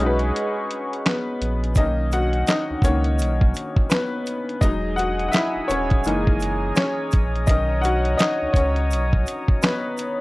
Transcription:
0.00 0.32 B1 medium
0.00 1.69 G#3 medium
0.00 1.72 C#4 medium
0.00 1.73 D#4 medium
0.00 1.75 F#4 medium
0.00 1.74 G#4 medium
0.00 1.74 D#5 medium
0.00 1.74 C#6 medium
0.06 1.04 B4 medium
0.19 closed hi-hat soft
0.36 closed hi-hat medium
0.71 closed hi-hat medium
0.93 closed hi-hat soft
1.06 1.74 B3 medium
1.06 1.79 B4 medium
1.06 snare loud
1.06 clap medium
1.06 closed hi-hat medium
1.41 1.75 A#1 loud
1.41 closed hi-hat medium
1.64 closed hi-hat soft
1.75 2.44 B1 loud
1.75 2.27 D#3 medium
1.75 2.28 A#3 soft
1.75 2.28 C#4 medium
1.75 2.11 D#4 medium
1.75 2.10 D#5 loud
1.75 kick loud
1.75 closed hi-hat medium
1.75 shaker medium
2.12 2.46 F#4 medium
2.12 2.49 F#5 medium
2.12 closed hi-hat medium
2.12 shaker soft
2.33 closed hi-hat soft
2.47 2.82 D#4 medium
2.47 2.85 D#5 medium
2.47 snare loud
2.47 clap medium
2.47 closed hi-hat medium
2.47 shaker medium
2.70 2.76 C#2 soft
2.82 3.22 C#2 loud
2.82 3.16 D#3 soft
2.82 3.16 A#3 soft
2.82 3.52 C#4 medium
2.82 3.51 C#5 medium
2.82 kick medium
2.82 closed hi-hat medium
2.82 shaker medium
3.04 closed hi-hat soft
3.19 3.53 B1 loud
3.19 closed hi-hat medium
3.19 shaker medium
3.41 kick medium
3.54 closed hi-hat medium
3.54 shaker medium
3.76 kick loud
3.90 4.59 B3 medium
3.90 4.64 B4 medium
3.90 snare loud
3.90 clap medium
3.90 closed hi-hat medium
3.90 shaker medium
4.26 closed hi-hat medium
4.26 shaker soft
4.49 closed hi-hat soft
4.61 5.29 E1 loud
4.61 5.13 F#3 medium
4.61 5.13 G#3 soft
4.61 5.14 D#4 medium
4.61 7.45 G#4 medium
4.61 4.95 D#5 loud
4.61 7.45 G#5 medium
4.61 6.02 D#6 loud
4.61 kick loud
4.61 closed hi-hat medium
4.61 shaker medium
4.96 5.27 F#4 medium
4.96 5.27 F#5 medium
4.96 closed hi-hat medium
4.96 shaker soft
5.19 closed hi-hat soft
5.28 5.40 E5 medium
5.28 5.34 F#5 medium
5.33 5.43 E4 medium
5.33 snare loud
5.33 clap medium
5.33 closed hi-hat medium
5.33 shaker medium
5.56 5.61 D#1 soft
5.68 6.03 D#1 loud
5.68 6.38 C#4 medium
5.68 6.36 C#5 medium
5.68 closed hi-hat medium
5.68 shaker medium
5.90 kick medium
5.90 closed hi-hat soft
6.03 6.73 F#1 loud
6.03 6.56 E3 medium
6.03 6.56 G#3 soft
6.03 6.57 A#3 medium
6.03 10.21 A#5 medium
6.03 10.21 D#6 medium
6.03 shaker medium
6.07 6.57 D#4 medium
6.07 closed hi-hat medium
6.27 kick medium
6.40 closed hi-hat medium
6.40 shaker soft
6.76 7.45 C#4 medium
6.76 7.50 C#5 medium
6.76 snare loud
6.76 clap medium
6.76 closed hi-hat medium
6.76 shaker medium
7.11 7.47 A#1 medium
7.11 kick loud
7.11 closed hi-hat medium
7.11 shaker soft
7.36 closed hi-hat soft
7.47 8.16 B1 loud
7.47 10.21 D#3 medium
7.47 8.56 C#4 medium
7.47 7.83 D#4 medium
7.47 10.21 A#4 soft
7.47 10.21 C#5 medium
7.47 7.84 D#5 loud
7.47 kick loud
7.47 closed hi-hat medium
7.47 shaker medium
7.82 8.18 F#4 medium
7.82 8.16 F#5 medium
7.82 closed hi-hat medium
7.82 shaker soft
8.05 closed hi-hat soft
8.18 8.54 D#4 medium
8.18 8.55 D#5 medium
8.18 snare loud
8.18 clap medium
8.18 closed hi-hat medium
8.18 shaker medium
8.42 8.48 C#2 soft
8.53 8.93 C#2 loud
8.53 9.23 C#4 medium
8.53 9.21 C#5 medium
8.53 kick medium
8.53 closed hi-hat medium
8.53 shaker medium
8.76 closed hi-hat soft
8.91 9.25 B1 loud
8.91 closed hi-hat medium
8.91 shaker medium
9.13 kick medium
9.26 closed hi-hat medium
9.26 shaker medium
9.48 kick loud
9.62 10.21 B3 medium
9.62 10.21 B4 medium
9.62 snare loud
9.62 clap medium
9.62 closed hi-hat medium
9.62 shaker medium
9.97 closed hi-hat medium
9.97 shaker soft

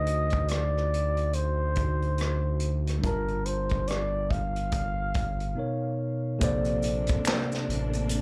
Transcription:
0.00 2.99 D2 medium
0.00 1.70 D3 medium
0.00 1.71 A3 soft
0.00 1.73 D#4 medium
0.00 1.74 F#4 medium
0.00 1.78 C5 medium
0.00 0.51 D#5 medium
0.07 closed hi-hat medium
0.30 kick medium
0.30 closed hi-hat soft
0.48 1.36 D5 medium
0.48 cross-stick medium
0.48 closed hi-hat medium
0.77 cross-stick soft
0.94 closed hi-hat medium
1.17 closed hi-hat soft
1.33 2.80 C5 medium
1.33 closed hi-hat medium
1.75 3.02 D3 soft
1.75 3.03 A3 soft
1.75 3.04 D#4 soft
1.75 3.04 F#4 soft
1.75 kick medium
1.75 closed hi-hat medium
1.79 3.05 C5 soft
2.02 closed hi-hat soft
2.18 cross-stick medium
2.18 closed hi-hat medium
2.60 closed hi-hat medium
2.87 cross-stick soft
2.87 closed hi-hat soft
2.99 5.50 G3 medium
2.99 5.52 D4 medium
3.03 5.53 G1 medium
3.03 5.53 F4 soft
3.03 3.48 A#4 medium
3.03 5.54 A5 medium
3.03 kick loud
3.03 closed hi-hat medium
3.09 5.55 A#4 medium
3.28 closed hi-hat soft
3.46 3.90 C5 medium
3.46 closed hi-hat medium
3.69 kick medium
3.69 closed hi-hat soft
3.88 4.33 D5 medium
3.88 cross-stick medium
3.88 closed hi-hat medium
4.31 6.00 F5 medium
4.31 kick medium
4.31 closed hi-hat medium
4.56 closed hi-hat soft
4.72 kick medium
4.72 closed hi-hat medium
5.14 kick medium
5.14 closed hi-hat medium
5.40 closed hi-hat soft
5.54 6.40 B2 medium
5.54 6.41 B3 medium
5.54 6.41 D#4 medium
5.54 6.42 A#4 medium
5.59 6.43 C#5 medium
6.39 7.17 A#1 loud
6.39 8.00 C3 medium
6.39 8.22 C3 medium
6.39 8.00 A#3 medium
6.39 8.22 A#3 medium
6.39 8.22 D4 medium
6.39 8.22 A4 medium
6.39 8.01 A4 medium
6.39 8.02 C5 medium
6.39 kick loud
6.39 closed hi-hat medium
6.39 maracas medium
6.44 8.02 D5 loud
6.65 closed hi-hat soft
6.65 maracas soft
6.82 closed hi-hat medium
6.82 maracas soft
7.07 kick medium
7.07 closed hi-hat soft
7.07 maracas soft
7.25 finger snap medium
7.25 snare loud
7.25 clap medium
7.25 closed hi-hat medium
7.25 maracas medium
7.52 snare soft
7.52 maracas soft
7.69 8.22 A1 medium
7.69 closed hi-hat medium
7.93 closed hi-hat soft
7.93 maracas soft
8.09 closed hi-hat medium
8.09 maracas medium

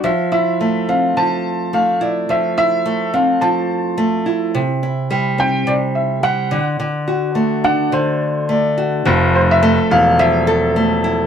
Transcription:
0.00 1.16 F3 medium
0.00 0.10 D4 medium
0.00 0.10 F#4 medium
0.00 0.31 E5 medium
0.32 2.00 E4 soft
0.32 0.90 E5 medium
0.61 1.72 A3 medium
0.89 3.13 C4 medium
0.89 1.18 F5 medium
1.17 2.28 F3 medium
1.17 1.75 A5 loud
1.73 2.84 A3 medium
1.73 2.02 F5 medium
2.01 2.57 E4 medium
2.01 2.30 D5 medium
2.29 3.41 F3 medium
2.29 2.56 E5 medium
2.57 4.26 E4 medium
2.57 3.10 E5 loud
2.86 3.96 A3 medium
3.14 4.61 C4 medium
3.14 3.43 F5 medium
3.41 4.61 F3 medium
3.41 4.22 A5 medium
3.98 4.61 A3 medium
4.26 4.61 E4 medium
4.55 5.66 C3 medium
4.83 6.58 E4 medium
5.11 6.22 G3 medium
5.38 6.58 C4 medium
5.38 5.69 G5 medium
5.67 6.58 C3 medium
5.67 5.73 D5 medium
5.95 6.25 E5 medium
6.23 6.58 G3 medium
6.23 6.64 F#5 medium
6.51 6.78 D3 medium
6.80 7.91 D3 medium
7.08 8.76 F#4 medium
7.35 8.49 A3 medium
7.64 9.12 D4 medium
7.64 7.91 F#5 medium
7.92 9.05 D3 medium
7.92 8.51 C5 medium
8.49 9.62 A3 medium
8.49 8.91 D5 medium
8.78 9.12 F#4 medium
9.05 9.74 F1 loud
9.05 10.18 F3 medium
9.36 9.41 C5 medium
9.51 9.93 E5 loud
9.63 10.75 A3 medium
9.91 11.27 E1 medium
9.91 11.04 E4 medium
9.91 10.17 F5 loud
10.19 11.27 F3 medium
10.19 11.00 E5 loud
10.47 11.27 A4 medium
10.76 11.27 A3 medium
11.04 11.27 E4 medium

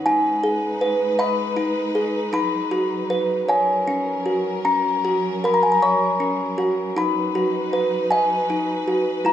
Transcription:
0.05 2.30 G#3 medium
0.05 3.45 D#4 medium
0.05 1.55 D#4 medium
0.05 3.44 B4 medium
0.05 1.22 G#5 medium
0.43 1.94 G#4 medium
0.81 2.33 B4 medium
1.19 2.33 D#5 medium
1.19 2.33 B5 medium
1.56 2.32 D#4 medium
1.95 2.33 G#4 medium
2.33 3.47 F#3 medium
2.33 3.48 D#4 medium
2.33 3.52 B5 medium
2.71 3.48 F#4 medium
3.10 3.48 B4 medium
3.49 9.22 F#3 medium
3.49 6.93 C#4 medium
3.49 6.93 A#4 medium
3.49 5.04 C#5 medium
3.49 4.69 G#5 medium
3.87 4.64 C#4 medium
4.26 5.03 F#4 medium
4.65 6.19 C#4 medium
4.65 5.47 A#5 medium
5.05 6.57 F#4 medium
5.44 6.97 A#4 medium
5.44 5.54 B5 medium
5.54 5.63 A#5 medium
5.63 5.72 G#5 medium
5.72 5.81 A#5 medium
5.82 6.97 C#5 medium
5.82 7.00 C#6 medium
6.20 6.96 C#4 medium
6.58 6.96 F#4 medium
6.95 9.22 D#4 medium
6.95 8.49 D#4 medium
6.95 9.33 B4 medium
6.95 8.15 B5 medium
7.35 8.86 F#4 medium
7.73 9.25 B4 medium
8.11 9.25 D#5 medium
8.11 9.28 G#5 medium
8.50 9.25 D#4 medium
8.88 9.25 F#4 medium
9.23 9.33 G#3 medium
9.23 9.33 E4 medium
9.23 9.33 A#5 medium

